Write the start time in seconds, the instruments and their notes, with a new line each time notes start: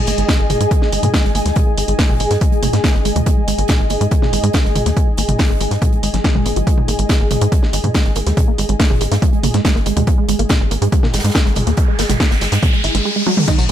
Already playing: ambient pad G#4 D#5 G#5
0.07 analog synth bass G#1, synth arpeggio sound A#3, closed hi-hat, open hi-hat
0.18 analog synth bass G#1, synth arpeggio sound G#3, closed hi-hat
0.29 synth arpeggio sound G#3, kick, snare, closed hi-hat
0.39 analog synth bass G#1, synth arpeggio sound A#3
0.50 analog synth bass G#1, synth arpeggio sound G#3, closed hi-hat, mid tom, open hi-hat
0.60 analog synth bass G#2, synth arpeggio sound G#3, closed hi-hat
0.71 synth arpeggio sound A#3, kick, closed hi-hat
0.82 synth arpeggio sound G#3, snare
0.92 analog synth bass G#1, synth arpeggio sound G#3, closed hi-hat, open hi-hat
1.03 analog synth bass G#2, synth arpeggio sound A#3, closed hi-hat, mid tom
1.14 synth arpeggio sound G#3, kick, snare, closed hi-hat
1.24 analog synth bass G#1, synth arpeggio sound G#3, snare
1.35 analog synth bass G#1, synth arpeggio sound A#3, closed hi-hat, open hi-hat
1.46 analog synth bass D#2, synth arpeggio sound G#3, snare, closed hi-hat
1.56 synth arpeggio sound G#3, kick, closed hi-hat, mid tom
1.67 synth arpeggio sound A#3
1.77 analog synth bass G#1, synth arpeggio sound G#3, closed hi-hat, open hi-hat
1.88 analog synth bass G#1, synth arpeggio sound G#3, closed hi-hat
1.99 synth arpeggio sound A#3, kick, snare, closed hi-hat, open hi-hat
2.09 analog synth bass G#1, synth arpeggio sound G#3, mid tom
2.20 analog synth bass G#1, synth arpeggio sound G#3, closed hi-hat, open hi-hat
2.31 analog synth bass G#2, synth arpeggio sound A#3, snare, closed hi-hat
2.41 synth arpeggio sound G#3, kick, closed hi-hat
2.52 synth arpeggio sound G#3, closed hi-hat
2.63 analog synth bass G#1, synth arpeggio sound A#3, closed hi-hat, mid tom, open hi-hat
2.73 analog synth bass G#2, synth arpeggio sound G#3, snare, closed hi-hat
2.84 synth arpeggio sound G#3, kick, snare, closed hi-hat
2.94 analog synth bass G#1, synth arpeggio sound A#3, snare
3.05 analog synth bass G#1, synth arpeggio sound G#3, closed hi-hat, open hi-hat
3.16 analog synth bass D#2, synth arpeggio sound G#3, closed hi-hat, mid tom
3.26 synth arpeggio sound A#3, kick, closed hi-hat
3.37 synth arpeggio sound G#3
3.48 analog synth bass G#1, synth arpeggio sound G#3, closed hi-hat, open hi-hat
3.58 analog synth bass G#1, synth arpeggio sound A#3, closed hi-hat
3.68 synth arpeggio sound G#3, kick, snare, closed hi-hat, mid tom
3.79 analog synth bass G#1, synth arpeggio sound G#3
3.90 analog synth bass G#1, synth arpeggio sound A#3, closed hi-hat, open hi-hat
4.01 analog synth bass G#2, synth arpeggio sound G#3, closed hi-hat
4.11 synth arpeggio sound G#3, kick, closed hi-hat
4.22 synth arpeggio sound A#3, snare, mid tom
4.33 analog synth bass G#1, synth arpeggio sound G#3, closed hi-hat, open hi-hat
4.43 analog synth bass G#2, synth arpeggio sound G#3, closed hi-hat
4.53 synth arpeggio sound A#3, kick, snare, closed hi-hat
4.65 analog synth bass G#1, synth arpeggio sound G#3, snare
4.75 analog synth bass G#1, synth arpeggio sound G#3, closed hi-hat, mid tom, open hi-hat
4.86 analog synth bass D#2, synth arpeggio sound A#3, snare, closed hi-hat
4.96 synth arpeggio sound G#3, kick, closed hi-hat
5.07 synth arpeggio sound G#3
5.17 analog synth bass G#1, synth arpeggio sound A#3, closed hi-hat, open hi-hat
5.28 analog synth bass G#1, synth arpeggio sound G#3, closed hi-hat, mid tom
5.39 synth arpeggio sound G#3, kick, snare, closed hi-hat, open hi-hat
5.50 analog synth bass G#1, synth arpeggio sound A#3
5.60 analog synth bass G#1, synth arpeggio sound G#3, closed hi-hat, open hi-hat
5.71 analog synth bass G#2, synth arpeggio sound G#3, snare, closed hi-hat
5.82 synth arpeggio sound A#3, kick, closed hi-hat, mid tom
5.92 synth arpeggio sound G#3, closed hi-hat
6.03 analog synth bass G#1, synth arpeggio sound G#3, closed hi-hat, open hi-hat
6.14 analog synth bass G#1, synth arpeggio sound F#3, snare, closed hi-hat
6.24 synth arpeggio sound G#3, kick, snare, closed hi-hat
6.35 analog synth bass G#1, synth arpeggio sound G#3, mid tom
6.46 analog synth bass G#1, synth arpeggio sound B3, closed hi-hat, open hi-hat
6.56 analog synth bass G#1, synth arpeggio sound F#3, closed hi-hat
6.67 synth arpeggio sound G#3, kick, closed hi-hat
6.78 synth arpeggio sound G#3, mid tom
6.88 analog synth bass G#1, synth arpeggio sound A#3, closed hi-hat, open hi-hat
6.99 analog synth bass G#1, synth arpeggio sound G#3, closed hi-hat
7.09 synth arpeggio sound G#3, kick, snare, closed hi-hat
7.20 analog synth bass G#1, synth arpeggio sound A#3
7.31 analog synth bass G#1, synth arpeggio sound G#3, closed hi-hat, mid tom, open hi-hat
7.41 analog synth bass G#2, synth arpeggio sound G#3, closed hi-hat
7.52 synth arpeggio sound A#3, kick, closed hi-hat
7.63 synth arpeggio sound G#3, snare
7.73 analog synth bass G#1, synth arpeggio sound G#3, closed hi-hat, open hi-hat
7.84 analog synth bass G#2, synth arpeggio sound A#3, closed hi-hat, mid tom
7.94 synth arpeggio sound G#3, kick, snare, closed hi-hat
8.04 analog synth bass G#1, synth arpeggio sound G#3, snare
8.15 analog synth bass G#1, synth arpeggio sound A#3, closed hi-hat, open hi-hat
8.27 analog synth bass D#2, synth arpeggio sound G#3, snare, closed hi-hat
8.37 synth arpeggio sound G#3, kick, closed hi-hat, mid tom
8.48 synth arpeggio sound A#3
8.58 analog synth bass G#1, synth arpeggio sound G#3, closed hi-hat, open hi-hat
8.69 analog synth bass G#1, synth arpeggio sound G#3, closed hi-hat
8.80 synth arpeggio sound A#3, kick, snare, closed hi-hat, open hi-hat
8.90 analog synth bass G#1, synth arpeggio sound G#3, mid tom
9.01 analog synth bass G#1, synth arpeggio sound G#3, closed hi-hat, open hi-hat
9.12 analog synth bass G#2, synth arpeggio sound A#3, snare, closed hi-hat
9.22 synth arpeggio sound G#3, kick, closed hi-hat
9.33 synth arpeggio sound G#3, closed hi-hat
9.43 analog synth bass G#1, synth arpeggio sound A#3, closed hi-hat, mid tom, open hi-hat
9.54 analog synth bass G#2, synth arpeggio sound G#3, snare, closed hi-hat
9.65 synth arpeggio sound G#3, kick, snare, closed hi-hat
9.75 analog synth bass G#1, synth arpeggio sound A#3, snare
9.86 analog synth bass G#1, synth arpeggio sound G#3, closed hi-hat, open hi-hat
9.97 analog synth bass D#2, synth arpeggio sound G#3, closed hi-hat, mid tom
10.07 synth arpeggio sound A#3, kick, closed hi-hat, riser
10.18 synth arpeggio sound G#3
10.28 analog synth bass G#1, synth arpeggio sound G#3, closed hi-hat, open hi-hat
10.39 analog synth bass G#1, synth arpeggio sound A#3, closed hi-hat
10.49 synth arpeggio sound G#3, kick, snare, closed hi-hat, mid tom
10.60 analog synth bass G#1, synth arpeggio sound G#3
10.71 analog synth bass G#1, synth arpeggio sound A#3, closed hi-hat, open hi-hat
10.82 analog synth bass G#2, synth arpeggio sound G#3, closed hi-hat
10.92 synth arpeggio sound G#3, kick, closed hi-hat
11.03 synth arpeggio sound A#3, snare, mid tom
11.13 analog synth bass G#1, synth arpeggio sound G#3, snare, closed hi-hat, open hi-hat
11.19 snare, closed hi-hat
11.24 analog synth bass G#2, synth arpeggio sound G#3, snare, closed hi-hat
11.29 snare, closed hi-hat
11.34 synth arpeggio sound A#3, kick, snare, closed hi-hat
11.45 analog synth bass G#1, synth arpeggio sound G#3, snare
11.56 analog synth bass G#1, synth arpeggio sound G#3, closed hi-hat, mid tom, open hi-hat
11.66 analog synth bass D#2, synth arpeggio sound A#3, snare, closed hi-hat
11.77 synth arpeggio sound G#3, kick, closed hi-hat
11.88 synth arpeggio sound G#3
11.99 analog synth bass G#1, synth arpeggio sound A#3, snare, closed hi-hat, open hi-hat
12.09 analog synth bass G#1, synth arpeggio sound G#3, snare, closed hi-hat, mid tom
12.20 synth arpeggio sound G#3, kick, snare, closed hi-hat
12.31 analog synth bass G#1, synth arpeggio sound A#3, snare, closed hi-hat
12.41 analog synth bass G#1, synth arpeggio sound G#3, snare, closed hi-hat, open hi-hat
12.52 analog synth bass G#2, synth arpeggio sound G#3, snare, closed hi-hat
12.63 synth arpeggio sound A#3, kick, closed hi-hat, mid tom
12.73 synth arpeggio sound G#3, closed hi-hat
12.84 analog synth bass G#1, synth arpeggio sound E4, open hi-hat
12.95 analog synth bass G#1, synth arpeggio sound G#3, snare, closed hi-hat
13.05 synth arpeggio sound G#3
13.16 synth arpeggio sound G#3
13.27 synth arpeggio sound F#3, high tom
13.37 synth arpeggio sound G#3, mid tom
13.48 synth stab D#3 G#3 D#4, synth arpeggio sound G#3, kick, closed hi-hat, crash, tambourine, impact
13.58 synth arpeggio sound F#3, mid tom, tambourine